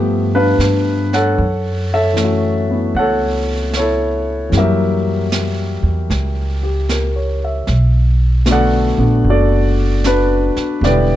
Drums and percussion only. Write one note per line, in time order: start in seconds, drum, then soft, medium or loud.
0.60 snare soft
0.60 hi-hat pedal soft
1.13 snare soft
1.39 brush sweep soft
2.17 snare soft
2.17 hi-hat pedal soft
2.95 brush sweep soft
3.73 snare soft
3.73 hi-hat pedal soft
4.52 brush sweep soft
4.52 snare soft
5.32 snare soft
5.32 hi-hat pedal medium
6.11 brush sweep soft
6.11 snare soft
6.89 snare soft
6.89 hi-hat pedal medium
7.67 brush sweep soft
7.67 snare soft
8.46 snare soft
8.46 hi-hat pedal medium
9.25 brush sweep soft
10.04 snare soft
10.04 hi-hat pedal soft
10.56 snare soft
10.84 brush sweep soft
10.84 snare soft